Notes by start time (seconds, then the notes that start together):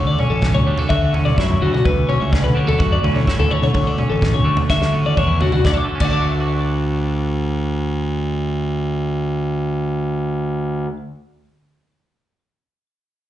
Already playing: D2 D3
0.07 D5
0.19 C#4 C#5, mid tom
0.30 A1 A4
0.42 kick, snare, floor tom
0.55 D2 C#5, mid tom
0.67 D3 G3
0.78 A3, floor tom
0.89 D3 F#4 E5, kick
1.13 A2 C#4, floor tom
1.25 D5, mid tom
1.38 F#2 E4 C#5, kick, snare
1.50 floor tom
1.61 D2 A3 F#4
1.74 F#4, mid tom
1.84 D2 B4, kick, floor tom
2.09 C#4 C#5, mid tom
2.20 C#2 E5
2.32 D5, kick, snare, floor tom
2.44 D3 B4, mid tom
2.55 D3 G3 C#5
2.67 A3 A4, floor tom
2.79 F#2 F#4, kick
2.92 D5
3.03 D2 A2 C#4, floor tom
3.16 C#5, mid tom
3.27 E4, kick, snare
3.39 D2 A4, floor tom
3.50 A3 C#5
3.62 D3 C#5, mid tom
3.74 D2 D3, kick, floor tom
3.87 D5
3.98 C#4 C#5, mid tom
4.10 A1 A4
4.22 kick, snare, floor tom
4.33 D2 C#5, mid tom
4.44 D3 A3
4.57 floor tom
4.70 D3 F#4 E5, kick, snare
4.82 snare
4.92 A2 C#4
5.05 D5, high tom
5.17 E2 D4 C#5, kick, mid tom
5.27 E4
5.40 D2 A3 F#4, floor tom
5.52 F#4, floor tom
5.65 D2 D5, kick, snare
5.70 F#5 A5
5.74 D3 D6
5.84 A3
5.95 C#4
6.00 D2 D5, kick, crash
6.05 F#4 F#5
6.09 D3 A5 D6
6.21 A3
6.41 F#4